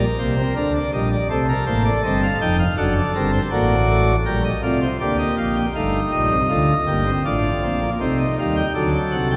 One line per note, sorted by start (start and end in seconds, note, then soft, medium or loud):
0.00 0.54 A#4 medium
0.19 0.42 C2 medium
0.19 0.42 C3 medium
0.19 0.35 A#3 medium
0.19 0.42 C5 medium
0.37 0.53 C4 medium
0.56 0.79 D2 medium
0.56 0.79 D3 medium
0.56 0.79 D4 medium
0.56 0.72 A#4 medium
0.75 0.91 D5 medium
0.93 1.16 A#1 medium
0.93 1.16 A#2 medium
0.93 1.16 G3 medium
0.93 1.09 D#5 medium
1.12 1.28 D5 medium
1.30 1.53 C2 medium
1.30 1.53 C3 medium
1.30 1.53 A3 medium
1.30 2.56 A4 medium
1.30 1.46 C5 medium
1.49 1.64 A#4 medium
1.67 1.90 A1 medium
1.67 1.90 A2 medium
1.67 1.90 A#3 medium
1.67 1.82 C5 medium
1.85 2.01 D5 medium
2.04 2.27 G1 medium
2.04 2.26 G2 medium
2.04 2.27 C4 medium
2.04 2.19 D#5 medium
2.23 2.38 F5 medium
2.42 2.64 F1 medium
2.42 2.64 F2 medium
2.42 2.64 D#4 medium
2.42 2.57 G5 medium
2.59 2.74 F5 medium
2.77 3.00 F#1 medium
2.77 3.00 F#2 medium
2.77 3.00 D4 loud
2.77 3.41 A4 medium
2.77 2.93 F#5 medium
2.97 3.12 D5 medium
3.16 3.38 G1 medium
3.16 3.38 G2 medium
3.16 3.38 C4 medium
3.16 3.30 A#4 medium
3.33 3.48 C5 medium
3.51 4.16 A1 medium
3.51 4.15 A2 medium
3.51 3.74 A#3 medium
3.51 4.15 F#4 medium
3.51 4.15 D5 medium
3.88 4.12 A3 medium
4.26 4.49 A#1 medium
4.26 4.49 A#2 medium
4.26 4.49 G3 medium
4.26 4.49 G4 medium
4.26 4.42 A#4 medium
4.45 4.61 D#5 medium
4.63 4.86 C2 medium
4.63 4.86 C3 medium
4.63 4.86 A3 medium
4.63 4.86 F4 medium
4.63 4.79 D5 medium
4.81 4.97 C5 medium
5.00 5.24 D2 medium
5.00 5.24 D3 medium
5.00 5.66 A#3 medium
5.00 5.65 G4 medium
5.00 5.17 D5 medium
5.19 5.35 D#5 medium
5.38 5.61 A#1 medium
5.38 5.61 A#2 medium
5.38 5.54 F5 medium
5.56 5.73 G5 medium
5.75 5.99 G1 medium
5.75 5.99 G2 medium
5.75 5.99 A3 medium
5.75 6.40 D#4 medium
5.75 5.99 F5 medium
6.12 6.29 A#1 medium
6.12 6.29 A#2 medium
6.12 6.36 G3 medium
6.12 7.09 D#5 medium
6.30 6.47 C2 medium
6.30 6.47 C3 medium
6.49 6.73 D2 medium
6.49 6.74 D3 medium
6.49 6.74 A3 medium
6.49 6.73 F4 medium
6.87 7.11 G1 medium
6.87 7.11 G2 medium
6.87 7.04 A#3 medium
6.87 7.11 G4 medium
7.06 7.23 C4 medium
7.25 7.48 A1 medium
7.25 7.49 A2 medium
7.25 7.48 D4 medium
7.25 7.90 F4 medium
7.25 7.90 D5 medium
7.63 7.86 A#1 medium
7.63 7.86 A#2 medium
7.63 7.79 C4 medium
7.82 7.98 A#3 medium
8.00 8.24 C2 medium
8.00 8.24 C3 medium
8.00 8.24 A3 medium
8.00 8.65 D#4 medium
8.00 8.17 C5 medium
8.20 8.36 D#5 medium
8.39 8.62 D#2 medium
8.39 8.62 D#3 medium
8.39 8.62 G3 medium
8.39 8.55 F5 medium
8.56 8.73 G5 medium
8.75 8.98 D2 medium
8.75 8.98 D3 medium
8.75 9.37 F#3 medium
8.75 9.37 A4 medium
8.75 8.98 D5 medium
9.12 9.35 C2 medium
9.12 9.35 C3 medium
9.12 9.28 F#5 medium
9.31 9.37 G5 medium